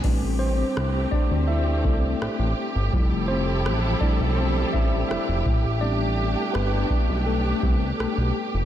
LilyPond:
<<
  \new Staff \with { instrumentName = "Tine electric piano" } { \time 4/4 \key a \minor \tempo 4 = 83 r8 <c' c''>4 <d' d''>8 <e' e''>8 <a a'>4 r8 | r8 <c' c''>4 <d' d''>8 <c' c''>8 <e' e''>8 <e' e''>4 | <d' d''>4 <b b'>4 <a a'>4 <a a'>8. r16 | }
  \new Staff \with { instrumentName = "Tine electric piano" } { \time 4/4 \key a \minor <g c' d' b'>1 | <g a e'>8 r4 <g a e'>8 r2 | <g b c'>1 | }
  \new Staff \with { instrumentName = "String section" } { \time 4/4 \key a \minor <a c' g'>1 | <f e' a'>2.~ <f e' a'>8 <a d'>8~ | <a d'>1 | }
  \new Staff \with { instrumentName = "Analog synth bass" } { \clef bass \time 4/4 \key a \minor a,,4 c,8 r16 d,8. c,8 a,,16 a,,16 r16 g,,16 | f,,4 a,,8 r16 b,,8. a,,8 f,,16 f,,16 a,,8~ | a,,4 g,,8 r16 b,,8. c,8 b,,16 b,,16 r16 f,,16 | }
  \new DrumStaff \with { instrumentName = "Drums" } \drummode { \time 4/4 <cymc bd>4 ss8 bd8 r8 bd8 ss4 | bd4 ss8 bd8 r8 bd8 ss8 bd8 | r4 ss8 bd8 r8 bd8 ss4 | }
>>